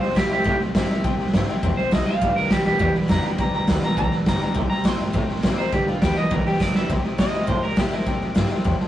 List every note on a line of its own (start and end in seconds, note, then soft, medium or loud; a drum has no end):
0.00 0.14 C3 medium
0.00 0.43 C3 medium
0.00 0.14 G3 medium
0.00 0.15 C5 medium
0.00 0.11 C5 medium
0.00 0.11 E5 medium
0.00 0.11 G5 medium
0.00 muted upright bass stroke medium
0.00 snare soft
0.10 snare soft
0.15 0.30 F2 medium
0.15 0.43 C3 medium
0.15 0.30 E3 medium
0.15 0.43 A3 medium
0.15 0.30 A#3 medium
0.15 0.30 C4 medium
0.15 0.28 E4 loud
0.15 0.31 G4 medium
0.15 0.25 C5 medium
0.15 0.25 E5 medium
0.15 0.25 G5 medium
0.15 kick medium
0.15 snare loud
0.15 hi-hat pedal medium
0.29 0.45 G2 loud
0.29 0.46 C4 medium
0.29 0.44 E4 medium
0.29 0.44 G4 loud
0.29 0.40 C5 medium
0.29 0.40 E5 medium
0.29 0.40 G5 medium
0.29 snare soft
0.44 1.01 G2 medium
0.44 0.59 A2 medium
0.44 0.72 C3 medium
0.44 0.72 A3 medium
0.44 0.60 G4 loud
0.44 0.55 C5 loud
0.44 0.55 E5 medium
0.44 0.55 G5 loud
0.44 kick loud
0.44 snare soft
0.60 0.69 C5 medium
0.60 0.69 E5 medium
0.60 0.69 G5 medium
0.60 muted upright bass stroke medium
0.60 snare soft
0.75 0.88 A#2 medium
0.75 1.01 C3 medium
0.75 1.03 E3 medium
0.75 1.02 G3 medium
0.75 1.03 A#3 medium
0.75 1.03 C4 medium
0.75 1.04 E4 medium
0.75 0.84 C5 medium
0.75 0.84 E5 medium
0.75 0.84 G5 medium
0.75 kick medium
0.75 snare loud
0.75 hi-hat pedal medium
0.90 0.99 C5 medium
0.90 0.99 E5 medium
0.90 0.99 G5 medium
0.90 snare soft
1.04 1.18 A2 loud
1.04 1.31 C3 medium
1.04 1.60 C3 medium
1.04 1.31 G3 loud
1.04 1.13 C5 loud
1.04 1.13 E5 loud
1.04 1.13 G5 loud
1.04 kick loud
1.04 snare soft
1.18 1.32 A#2 loud
1.18 1.28 C5 medium
1.18 1.28 E5 medium
1.18 1.28 G5 medium
1.18 snare soft
1.27 snare soft
1.33 1.47 G2 medium
1.33 1.60 C3 medium
1.33 1.48 E3 medium
1.33 1.60 A3 medium
1.33 1.48 A#3 medium
1.33 1.49 C4 medium
1.33 1.47 E4 medium
1.33 1.43 C5 medium
1.33 1.43 E5 medium
1.33 1.43 G5 loud
1.33 kick medium
1.33 snare loud
1.33 hi-hat pedal medium
1.48 1.64 C4 soft
1.48 1.62 E4 medium
1.48 1.57 C5 medium
1.48 1.57 E5 medium
1.48 1.58 G5 loud
1.48 muted upright bass stroke medium
1.48 snare soft
1.63 1.77 E2 medium
1.63 2.19 G2 medium
1.63 1.89 C3 medium
1.63 1.90 A3 medium
1.63 1.72 C5 loud
1.63 1.72 E5 loud
1.63 1.72 G5 loud
1.63 kick loud
1.63 snare soft
1.77 1.86 C5 medium
1.77 1.92 C5 loud
1.77 1.86 E5 medium
1.77 1.87 G5 medium
1.77 muted upright bass stroke medium
1.77 snare soft
1.91 2.06 C2 medium
1.91 2.19 C3 medium
1.91 2.06 E3 medium
1.91 2.19 G3 medium
1.91 2.07 A#3 medium
1.91 2.07 C4 medium
1.91 2.04 E4 medium
1.91 2.01 C5 medium
1.91 2.06 D#5 medium
1.91 2.01 E5 medium
1.91 2.02 A5 medium
1.91 kick medium
1.91 snare loud
1.91 hi-hat pedal medium
2.06 2.22 C4 soft
2.06 2.20 E4 medium
2.06 2.16 C5 medium
2.06 2.16 E5 medium
2.06 2.35 F5 medium
2.06 2.17 G5 medium
2.06 muted upright bass stroke medium
2.06 snare soft
2.21 2.35 G1 loud
2.21 2.48 G2 medium
2.21 2.49 D3 medium
2.21 2.49 G3 loud
2.21 2.31 B4 loud
2.21 2.31 D5 medium
2.21 2.31 G5 loud
2.21 kick medium
2.21 snare soft
2.36 2.50 A#4 medium
2.36 2.46 B4 medium
2.36 2.45 D5 medium
2.36 2.46 G5 medium
2.36 muted upright bass stroke medium
2.36 snare soft
2.44 snare soft
2.50 2.65 C2 medium
2.50 2.77 G2 medium
2.50 2.78 E3 medium
2.50 2.65 G3 medium
2.50 2.65 B3 loud
2.50 2.64 F4 medium
2.50 2.65 G4 medium
2.50 2.60 B4 medium
2.50 2.60 D5 medium
2.50 2.60 G5 medium
2.50 kick medium
2.50 snare loud
2.50 hi-hat pedal medium
2.65 2.80 D2 loud
2.65 2.80 B3 medium
2.65 2.80 F4 medium
2.65 2.79 G4 medium
2.65 2.75 B4 medium
2.65 2.75 D5 medium
2.65 2.75 G5 medium
2.65 snare soft
2.79 2.94 E2 medium
2.79 3.07 G2 medium
2.79 3.35 D3 medium
2.79 3.07 E3 loud
2.79 2.94 G4 medium
2.79 2.89 B4 medium
2.79 2.89 D5 medium
2.79 2.89 G5 loud
2.79 kick loud
2.79 snare soft
2.95 3.04 B4 medium
2.95 3.04 D5 medium
2.95 3.04 G5 medium
2.95 muted upright bass stroke medium
2.95 snare soft
3.02 snare soft
3.08 3.23 F2 medium
3.08 3.23 G3 medium
3.08 3.23 B3 medium
3.08 3.21 F4 loud
3.08 3.18 B4 medium
3.08 3.19 D5 medium
3.08 3.19 G5 medium
3.08 3.24 A#5 loud
3.08 kick medium
3.08 snare loud
3.08 hi-hat pedal loud
3.22 3.38 B3 soft
3.22 3.37 F4 medium
3.22 3.33 B4 medium
3.22 3.33 D5 medium
3.22 3.33 G5 medium
3.22 muted upright bass stroke medium
3.22 snare soft
3.38 3.52 E2 loud
3.38 3.66 G2 medium
3.38 3.66 D3 medium
3.38 3.66 G3 medium
3.38 3.48 B4 medium
3.38 3.48 D5 medium
3.38 3.48 G5 loud
3.38 3.54 A#5 medium
3.38 kick loud
3.38 snare soft
3.53 3.67 F2 medium
3.53 3.62 B4 medium
3.53 3.62 D5 medium
3.53 3.63 G5 medium
3.53 3.69 A#5 medium
3.53 snare soft
3.67 3.82 D2 medium
3.67 3.94 G2 medium
3.67 3.95 E3 medium
3.67 3.82 G3 medium
3.67 3.82 B3 medium
3.67 3.82 F4 medium
3.67 3.77 B4 medium
3.67 3.77 D5 medium
3.67 3.77 G5 medium
3.67 kick medium
3.67 snare loud
3.67 hi-hat pedal medium
3.82 3.98 B3 soft
3.82 3.97 F4 medium
3.82 3.91 B4 medium
3.82 3.91 D5 medium
3.82 3.92 G5 medium
3.82 3.97 A#5 loud
3.82 muted upright bass stroke medium
3.82 snare soft
3.97 4.11 B1 medium
3.97 4.24 G2 medium
3.97 4.53 D3 medium
3.97 4.24 E3 loud
3.97 4.06 B4 loud
3.97 4.06 D5 medium
3.97 4.06 G5 loud
3.97 4.12 A#5 loud
3.97 kick loud
3.97 snare soft
4.12 4.21 B4 medium
4.12 4.21 D5 medium
4.12 4.21 A5 medium
4.12 snare soft
4.26 4.40 G1 medium
4.26 4.53 G2 medium
4.26 4.53 D3 medium
4.26 4.40 G3 medium
4.26 4.41 B3 medium
4.26 4.40 F4 medium
4.26 4.35 B4 medium
4.26 4.35 D5 medium
4.26 4.35 A5 medium
4.26 4.40 A#5 medium
4.26 kick medium
4.26 snare loud
4.26 hi-hat pedal medium
4.41 4.56 B3 soft
4.41 4.55 F4 medium
4.41 4.50 B4 medium
4.41 4.50 D5 medium
4.41 4.50 G5 medium
4.41 4.56 A#5 medium
4.41 muted upright bass stroke medium
4.41 snare soft
4.54 4.70 C2 loud
4.54 5.11 C3 medium
4.54 4.82 C3 medium
4.54 4.83 G3 medium
4.54 4.65 C5 medium
4.54 4.65 E5 medium
4.54 4.65 G5 loud
4.54 kick loud
4.54 snare soft
4.70 4.79 C5 medium
4.70 4.79 E5 medium
4.70 4.79 G5 medium
4.70 4.86 A#5 medium
4.70 muted upright bass stroke medium
4.70 snare soft
4.78 snare soft
4.84 5.12 C3 medium
4.84 4.99 E3 medium
4.84 5.12 A3 medium
4.84 4.99 A#3 loud
4.84 4.99 C4 loud
4.84 4.98 E4 loud
4.84 4.94 C5 medium
4.84 4.94 E5 medium
4.84 4.94 G5 medium
4.84 5.42 C6 loud
4.84 kick medium
4.84 snare loud
4.84 hi-hat pedal medium
5.00 5.14 G2 loud
5.00 5.15 C4 medium
5.00 5.14 E4 medium
5.00 5.09 C5 medium
5.00 5.09 E5 medium
5.00 5.09 G5 medium
5.00 snare soft
5.13 5.69 G2 medium
5.13 5.28 A2 loud
5.13 5.40 C3 medium
5.13 5.41 A3 medium
5.13 5.23 C5 loud
5.13 5.23 E5 loud
5.13 5.23 G5 loud
5.13 kick loud
5.13 snare soft
5.28 5.37 C5 medium
5.28 5.38 E5 medium
5.28 5.38 G5 loud
5.28 muted upright bass stroke medium
5.28 snare soft
5.36 snare soft
5.43 5.57 A#2 medium
5.43 5.70 C3 medium
5.43 5.57 E3 medium
5.43 5.70 G3 medium
5.43 5.58 A#3 medium
5.43 5.58 C4 medium
5.43 5.56 E4 medium
5.43 5.52 C5 medium
5.43 5.53 E5 medium
5.43 5.53 G5 loud
5.43 kick medium
5.43 snare loud
5.43 hi-hat pedal medium
5.57 5.73 C4 soft
5.57 5.72 E4 medium
5.57 5.67 C5 medium
5.57 5.72 C5 medium
5.57 5.67 E5 medium
5.57 5.67 A#5 medium
5.57 muted upright bass stroke medium
5.57 snare soft
5.72 5.86 G1 loud
5.72 5.99 G2 medium
5.72 6.00 D3 medium
5.72 6.01 G3 loud
5.72 5.88 G4 medium
5.72 5.81 B4 loud
5.72 5.82 D5 medium
5.72 5.82 G5 medium
5.72 kick loud
5.72 snare soft
5.87 6.01 F2 loud
5.87 6.02 F4 medium
5.87 5.96 B4 medium
5.87 5.96 D5 medium
5.87 5.96 G5 medium
5.87 snare soft
6.02 6.16 D2 medium
6.02 6.28 G2 medium
6.02 6.28 E3 medium
6.02 6.16 G3 medium
6.02 6.17 B3 medium
6.02 6.15 F4 loud
6.02 6.16 G4 medium
6.02 6.11 B4 medium
6.02 6.11 D5 medium
6.02 6.11 G5 medium
6.02 kick loud
6.02 snare loud
6.02 hi-hat pedal medium
6.16 6.32 B3 medium
6.16 6.31 F4 medium
6.16 6.25 B4 medium
6.16 6.25 D5 medium
6.16 6.31 D#5 loud
6.16 6.25 G5 medium
6.16 muted upright bass stroke medium
6.16 snare soft
6.31 6.45 B1 medium
6.31 6.57 G2 medium
6.31 6.59 E3 medium
6.31 6.58 E3 medium
6.31 6.46 A#4 medium
6.31 6.40 B4 loud
6.31 6.40 D5 medium
6.31 6.40 G5 loud
6.31 kick loud
6.31 snare soft
6.46 6.60 G4 medium
6.46 6.55 B4 medium
6.46 6.55 D5 medium
6.46 6.55 G5 medium
6.46 muted upright bass stroke medium
6.46 snare soft
6.53 snare soft
6.60 6.74 G1 medium
6.60 6.88 B2 medium
6.60 6.87 D3 medium
6.60 6.75 A#4 medium
6.60 6.69 B4 medium
6.60 6.70 D5 medium
6.60 6.70 G5 medium
6.60 kick medium
6.60 snare medium
6.60 hi-hat pedal medium
6.75 6.89 E4 medium
6.75 6.84 B4 medium
6.75 6.84 D5 medium
6.75 6.84 G5 medium
6.75 muted upright bass stroke medium
6.75 snare medium
6.89 7.03 C2 medium
6.89 7.45 C3 medium
6.89 6.99 C5 loud
6.89 6.99 E5 medium
6.89 6.99 G5 loud
6.89 kick loud
6.89 snare soft
7.04 7.14 C5 medium
7.04 7.13 E5 medium
7.04 7.14 G5 medium
7.04 muted upright bass stroke medium
7.04 snare soft
7.18 7.33 F2 medium
7.18 7.33 E3 medium
7.18 7.33 A#3 medium
7.18 7.33 C4 medium
7.18 7.32 E4 medium
7.18 7.28 C5 medium
7.18 7.47 D#5 loud
7.18 7.28 E5 medium
7.18 7.28 G5 medium
7.18 kick medium
7.18 snare loud
7.18 hi-hat pedal medium
7.33 7.47 G2 medium
7.33 7.49 C4 soft
7.33 7.47 E4 medium
7.33 7.43 C5 medium
7.33 7.43 E5 medium
7.33 7.43 G5 medium
7.33 snare soft
7.41 snare soft
7.47 8.03 G2 medium
7.47 7.62 A2 medium
7.47 7.62 C5 medium
7.47 7.57 C5 medium
7.47 7.57 E5 medium
7.47 7.58 G5 loud
7.47 kick loud
7.47 snare soft
7.63 7.79 A#4 medium
7.63 7.72 C5 medium
7.63 7.72 E5 medium
7.63 7.72 G5 medium
7.63 muted upright bass stroke medium
7.63 snare soft
7.70 snare soft
7.76 7.91 A#2 medium
7.76 7.91 E3 medium
7.76 7.91 A#3 medium
7.76 7.92 C4 medium
7.76 7.90 E4 medium
7.76 7.93 G4 medium
7.76 7.87 C5 medium
7.76 7.87 E5 medium
7.76 7.87 G5 medium
7.76 kick loud
7.76 snare loud
7.76 hi-hat pedal medium
7.91 8.07 C4 soft
7.91 8.06 E4 medium
7.91 8.78 A#4 medium
7.91 8.01 C5 medium
7.91 8.02 E5 medium
7.91 8.02 A5 medium
7.91 muted upright bass stroke medium
7.91 snare soft
7.99 snare soft
8.06 8.20 A2 loud
8.06 8.62 C3 medium
8.06 8.16 C5 loud
8.06 8.16 E5 medium
8.06 8.16 G5 loud
8.06 kick loud
8.06 snare soft
8.21 8.35 A#2 loud
8.21 8.30 C5 medium
8.21 8.30 E5 medium
8.21 8.30 G5 medium
8.21 snare soft
8.35 8.50 G2 medium
8.35 8.49 E3 medium
8.35 8.50 A#3 medium
8.35 8.50 C4 medium
8.35 8.49 E4 loud
8.35 8.45 C5 medium
8.35 8.45 E5 medium
8.35 8.45 G5 medium
8.35 kick medium
8.35 snare loud
8.35 hi-hat pedal medium
8.50 8.65 C4 medium
8.50 8.64 E4 medium
8.50 8.60 C5 medium
8.50 8.60 E5 medium
8.50 8.60 G5 loud
8.50 muted upright bass stroke medium
8.50 snare soft
8.58 snare soft
8.64 8.79 E2 medium
8.64 8.88 G2 medium
8.64 8.74 C5 loud
8.64 8.74 E5 loud
8.64 8.74 G5 loud
8.64 kick loud
8.64 snare soft
8.80 8.88 C5 medium
8.80 8.88 E5 medium
8.80 8.88 A5 loud
8.80 muted upright bass stroke medium
8.80 snare soft